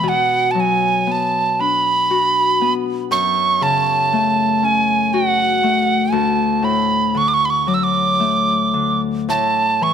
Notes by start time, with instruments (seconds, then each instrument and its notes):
Already playing: harp B3
0.03 harp B2
0.08 tin whistle F#5
0.51 harp F#3, tin whistle A5
0.60 tin whistle G#5
1.07 harp B3
1.12 tin whistle A5
1.59 harp D4, tin whistle B5
2.10 harp F#4
2.61 harp B3
3.11 harp F#2, tin whistle C#6
3.61 harp C#3, tin whistle A5
4.13 harp A3
4.63 harp C#4, tin whistle G#5
5.13 harp F#4, tin whistle F#5
5.63 harp A3
6.12 harp D2, tin whistle A5
6.62 harp A2, tin whistle B5
7.14 harp D3, tin whistle C#6
7.28 tin whistle D6
7.34 tin whistle C#6
7.45 tin whistle B5
7.50 tin whistle C#6
7.67 harp F#3, tin whistle D6
7.74 tin whistle E6
7.84 tin whistle D6
8.20 harp A3
8.74 harp D3
9.29 harp A2, tin whistle A5
9.81 harp E3, tin whistle C#6